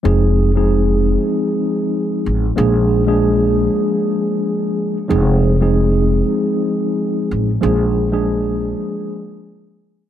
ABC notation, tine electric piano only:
X:1
M:4/4
L:1/16
Q:"Swing 16ths" 1/4=95
K:Fdor
V:1 name="Tine electric piano"
[F,A,CEA]3 [F,A,CEA]12 z | [F,A,B,DA]3 [F,A,B,DA]12 z | [F,A,CEA]3 [F,A,CEA]12 z | [F,A,B,DA]3 [F,A,B,DA]12 z |]